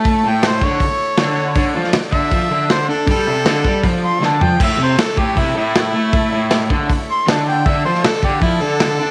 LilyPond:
<<
  \new Staff \with { instrumentName = "Harmonica" } { \time 4/4 \key a \major \tempo 4 = 158 a''8 g''8 c''8 cis''2~ cis''8~ | cis''8 r4 e''4. c''8 a'8 | a'2 r8 c'''8 a''8 g''8 | e''8 c''8 a'8 g'8 e'8 e'4.~ |
e'4. r4 c'''8 a''8 g''8 | e''8 c''8 a'8 g'8 e'8 a'4. | }
  \new Staff \with { instrumentName = "Transistor combo organ" } { \time 4/4 \key a \major <e' a' cis''>1 | <d' a' d''>1~ | <d' a' d''>1 | <e' a' cis''>1~ |
<e' a' cis''>1 | <d' a' d''>1 | }
  \new Staff \with { instrumentName = "Overdriven electric guitar" } { \clef bass \time 4/4 \key a \major a8 a,4 d8 r4 d4 | d8 f8 r8 d8 f8 d4 d'8 | g8 c8 d8 g8 f4 d8 f8 | a,8 c8 r8 a,8 c8 a,4 a8~ |
a8 a,4 d8 r4 d4 | d8 f8 r8 d8 f8 d4 d'8 | }
  \new DrumStaff \with { instrumentName = "Drums" } \drummode { \time 4/4 <hho bd>4 <hho sn>8 bd8 <hho bd>4 <hho sn>4 | <hho bd>8. sn16 <hho sn>8 bd8 <hho bd>4 <hho sn>4 | <hho bd>4 <hho sn>8 bd8 <hho bd>4 sn8 tomfh8 | <cymc bd>4 <hho sn>8 bd8 <hho bd>4 <hho sn>4 |
<hho bd>4 <hho sn>8 bd8 <hho bd>4 <hho sn>4 | <hho bd>8. sn16 <hho sn>8 bd8 <hho bd>4 <hho sn>4 | }
>>